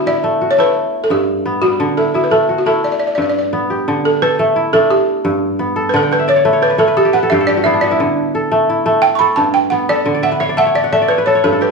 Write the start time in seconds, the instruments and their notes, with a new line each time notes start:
Already playing: kora D3 A3 B3 G4
0.06 kora E4, balafon D5
0.24 kora A3
0.41 kora F#4
0.51 balafon C#5
0.58 kora A3 E4, balafon B4
1.04 balafon A4
1.10 kora G2, balafon G4
1.46 kora B3
1.62 kora G3, balafon F#4
1.80 kora D3
1.97 kora E4, balafon A4
2.14 kora E4, balafon F#4
2.24 balafon B4
2.31 kora A3, balafon A4
2.49 kora F#4
2.58 balafon F#4
2.66 kora A3 E4, balafon A4
2.84 balafon D5
2.92 balafon D5
3.00 balafon D5
3.07 balafon D5
3.15 kora G2, balafon D5
3.22 balafon D5
3.30 balafon D5
3.39 balafon D5
3.53 kora B3
3.70 kora G4
3.88 kora D3
4.05 balafon A4
4.22 kora A4, balafon B4
4.39 kora A3
4.56 kora E4
4.73 kora A3 D4, balafon A4
4.91 balafon G4
5.25 kora G2
5.59 kora B3
5.76 kora A4
5.89 balafon B4
5.94 kora D3 F#5, balafon A4
6.03 kora G5
6.11 balafon B4, kora F#5
6.19 kora E5
6.28 balafon C#5, kora D5
6.36 kora C#5
6.45 kora A3 B4
6.53 kora C#5
6.62 balafon B4, kora D5
6.70 kora B4
6.78 kora A3 C#5, balafon A4
6.88 kora B4
6.97 balafon G4, kora A4
7.05 kora G4
7.13 kora B4, balafon F#5
7.23 kora A4
7.30 kora G2 G4, balafon E5
7.41 kora A4
7.47 kora G4, balafon D5
7.57 kora F#4
7.64 kora B3 E4, balafon E5
7.74 kora D4
7.81 kora F#4, balafon D5
7.91 kora E4
8.00 kora D3
8.35 kora A4
8.52 kora A3
8.69 kora E4
8.86 kora A3
9.02 balafon G5
9.15 balafon B5 C#6
9.20 kora A4
9.36 kora G2, balafon A5
9.54 balafon G5
9.70 kora B3, balafon F#5
9.89 kora A4, balafon D5
10.06 kora D3
10.14 kora D5
10.23 kora E5, balafon F#5
10.32 kora B4
10.40 kora C#5, balafon E5
10.49 kora D5
10.57 kora A3 E5, balafon F#5
10.66 kora C#5
10.75 kora D5, balafon D5
10.84 kora F#5
10.92 kora A3 E5, balafon D5
11.02 kora D5
11.08 balafon B4, kora C#5
11.18 kora B4
11.26 kora A4, balafon C#5
11.35 kora C#5
11.44 kora G2 B4, balafon A4
11.52 kora A4
11.61 kora G4, balafon B4